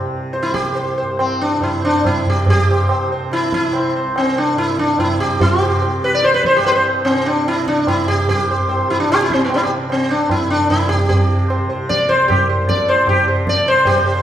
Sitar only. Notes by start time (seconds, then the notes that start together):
0.33 C5
0.43 E4
0.54 G4
0.75 C5
0.98 C5
1.19 C4 C5
1.41 D4
1.62 E4 C5
1.83 D4 C5
2.06 E4 C5
2.30 G4
2.50 G4
2.70 C5
2.91 C5
3.12 C5
3.33 E4
3.54 E4
3.75 C5
3.96 C5
4.18 C4
4.38 D4
4.58 E4
4.79 D4
5.00 E4
5.20 G4
5.41 E4
5.62 G4 C5
6.04 B4
6.15 D5
6.24 C5
6.34 B4
6.46 C5
6.56 G4
6.66 B4 C5
6.72 B4 C5
7.05 C4
7.26 D4
7.48 E4
7.68 D4
7.88 E4
8.08 G4
8.29 G4
8.51 C5
8.69 C5
8.90 E4
9.00 D4
9.12 G4
9.22 E4
9.33 C4
9.44 B3
9.54 E4
9.63 G4
9.92 C4
10.11 D4
10.31 E4
10.50 D4
10.70 E4
10.89 G4
11.09 G4
11.50 C5
11.70 C5
11.89 D5
12.09 C5
12.28 G4
12.49 C5
12.69 D5
12.89 C5
13.09 G4
13.28 C5
13.49 D5
13.68 C5
13.85 G4 C5
13.97 C5
14.07 C5
14.15 C5